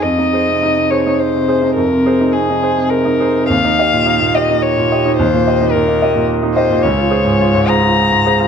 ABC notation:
X:1
M:3/4
L:1/16
Q:1/4=106
K:Fm
V:1 name="Violin"
e6 d2 c4 | B4 A4 B4 | f6 e2 d4 | c4 B4 z2 c2 |
d6 b6 |]
V:2 name="Grand piano"
F,, E [Ac] C, E C, [Ac] E2 C, [Ac] E | F,, C, [Ac] E C, E [Ac] C,2 E [Ac] C, | E,, E [Ge] B,, E B,, [Ge] E2 B,, [Ge] E | E,, B,, [Ge] E B,, E [Ge] B,,2 E [Ge] B,, |
D,, F [Ac] A,, F A,, [Ac] F2 A,, [Ac] F |]